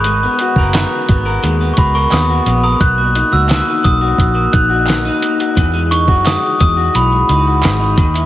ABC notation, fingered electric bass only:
X:1
M:4/4
L:1/16
Q:1/4=87
K:Elyd
V:1 name="Fingered electric bass" clef=bass
G,,,2 z F,,,2 z G,,,2 D,,2 C,,2 D,,2 A,,,2 | B,,,3 C,,2 z B,,,2 A,,,2 A,,,4 z2 | E,,3 F,,2 z E,,2 B,,,2 C,,2 G,,,2 D,,2 |]